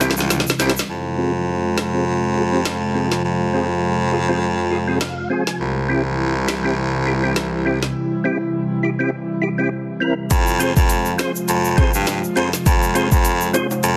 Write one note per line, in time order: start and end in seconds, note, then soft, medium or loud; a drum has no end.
0.00 0.14 C2 loud
0.00 0.85 C3 medium
0.00 0.85 E3 medium
0.00 0.85 G3 medium
0.00 0.14 C4 medium
0.00 0.85 E4 medium
0.00 0.14 E4 medium
0.00 0.15 G4 medium
0.00 snare medium
0.00 closed hi-hat medium
0.00 shaker medium
0.11 snare medium
0.17 0.44 C#2 medium
0.17 snare medium
0.17 shaker medium
0.30 snare medium
0.30 closed hi-hat medium
0.30 shaker medium
0.40 snare medium
0.47 snare loud
0.47 shaker medium
0.59 0.75 C2 medium
0.59 0.73 C4 medium
0.59 0.73 E4 medium
0.59 0.74 G4 medium
0.59 snare medium
0.59 closed hi-hat soft
0.59 shaker medium
0.70 snare loud
0.77 snare medium
0.77 shaker medium
0.89 3.21 F2 medium
0.89 5.56 C3 medium
0.89 5.56 F3 medium
0.89 5.56 G#3 medium
0.89 5.56 F4 medium
1.18 1.32 C4 medium
1.18 1.32 F4 medium
1.18 1.32 G#4 medium
1.77 1.84 F4 medium
1.77 1.85 G#4 medium
1.77 cross-stick medium
1.77 snare loud
1.93 2.04 C4 medium
1.93 2.04 F4 medium
1.93 2.05 G#4 medium
2.36 2.43 F4 medium
2.36 2.43 G#4 medium
2.52 2.63 C4 medium
2.52 2.63 F4 medium
2.52 2.64 G4 medium
2.65 cross-stick medium
2.65 snare loud
2.94 3.08 C4 medium
2.94 3.08 F4 medium
2.94 3.09 G#4 medium
3.12 snare medium
3.25 5.29 F2 medium
3.53 3.67 C4 medium
3.53 3.67 F4 medium
3.53 3.68 G#4 medium
4.12 4.19 F4 medium
4.12 4.20 G#4 medium
4.28 4.39 C4 medium
4.28 4.40 F4 medium
4.28 4.40 G#4 medium
4.71 4.78 F4 medium
4.71 4.79 G#4 medium
4.88 4.98 C4 medium
4.88 4.99 F4 medium
4.88 4.99 G#4 medium
5.01 5.29 F5 medium
5.01 cross-stick medium
5.01 snare loud
5.30 5.43 C4 medium
5.30 5.44 F4 medium
5.30 5.44 G#4 medium
5.30 5.58 G#5 medium
5.47 snare medium
5.60 7.91 C2 medium
5.60 10.27 C3 medium
5.60 10.27 E3 medium
5.60 10.27 G3 medium
5.60 10.27 E4 medium
5.89 6.02 C4 medium
5.89 6.03 E4 medium
5.89 6.03 G4 medium
6.48 6.55 E4 medium
6.48 6.55 G4 medium
6.48 cross-stick medium
6.48 snare loud
6.64 6.75 C4 medium
6.64 6.75 E4 medium
6.64 6.75 G4 medium
7.06 7.13 E4 medium
7.06 7.14 G4 medium
7.23 7.34 C4 medium
7.23 7.34 E4 medium
7.23 7.34 G4 medium
7.36 cross-stick medium
7.36 snare loud
7.65 7.79 C4 medium
7.65 7.79 E4 medium
7.65 7.80 G4 medium
7.83 snare medium
8.24 8.38 C4 medium
8.24 8.38 E4 medium
8.24 8.38 G4 medium
8.83 8.90 E4 medium
8.83 8.91 G4 medium
8.99 9.10 C4 medium
8.99 9.10 E4 medium
8.99 9.11 G4 medium
9.42 9.49 E4 medium
9.42 9.49 G4 medium
9.58 9.69 C4 medium
9.58 9.69 E4 medium
9.58 9.70 G4 medium
10.00 10.14 C4 medium
10.00 10.14 E4 medium
10.00 10.15 A#4 medium
10.31 10.73 F2 loud
10.31 13.97 C3 medium
10.31 13.97 F3 medium
10.31 13.97 G#3 medium
10.31 13.97 F4 medium
10.31 kick loud
10.31 closed hi-hat medium
10.31 shaker medium
10.47 shaker soft
10.59 10.73 C4 medium
10.59 10.73 F4 medium
10.59 10.73 G#4 medium
10.59 10.74 C5 loud
10.59 closed hi-hat medium
10.59 shaker medium
10.76 11.15 F2 loud
10.76 kick medium
10.76 shaker medium
10.89 closed hi-hat medium
10.89 shaker medium
11.06 shaker medium
11.18 11.32 C4 medium
11.18 11.32 F4 medium
11.18 11.32 G#4 medium
11.18 11.32 C5 loud
11.18 cross-stick medium
11.18 snare loud
11.18 closed hi-hat medium
11.18 shaker medium
11.36 shaker medium
11.48 11.90 F2 loud
11.48 closed hi-hat medium
11.48 shaker medium
11.65 shaker medium
11.77 11.90 C4 medium
11.77 11.91 F4 medium
11.77 11.91 G#4 medium
11.77 11.91 C5 loud
11.77 kick medium
11.77 closed hi-hat medium
11.94 12.21 G2 loud
11.94 shaker medium
12.07 cross-stick medium
12.07 snare loud
12.07 closed hi-hat medium
12.07 shaker medium
12.24 shaker medium
12.36 12.52 F2 loud
12.36 12.49 C4 medium
12.36 12.50 F4 medium
12.36 12.50 G#4 medium
12.36 12.50 C5 loud
12.36 closed hi-hat soft
12.53 snare medium
12.53 shaker medium
12.66 13.08 F2 loud
12.66 kick loud
12.66 closed hi-hat medium
12.66 shaker medium
12.83 shaker soft
12.95 13.08 C4 medium
12.95 13.08 F4 medium
12.95 13.09 G#4 medium
12.95 13.09 C5 medium
12.95 closed hi-hat medium
12.95 shaker soft
13.12 13.50 F2 loud
13.12 kick medium
13.12 shaker medium
13.25 closed hi-hat medium
13.25 shaker medium
13.41 shaker medium
13.53 13.67 C4 medium
13.53 13.67 F4 medium
13.53 13.67 G#4 medium
13.53 13.68 C5 loud
13.53 closed hi-hat medium
13.53 high timbale medium
13.53 shaker medium
13.71 high timbale medium
13.71 shaker medium
13.83 13.97 F2 loud
13.83 closed hi-hat medium
13.83 shaker medium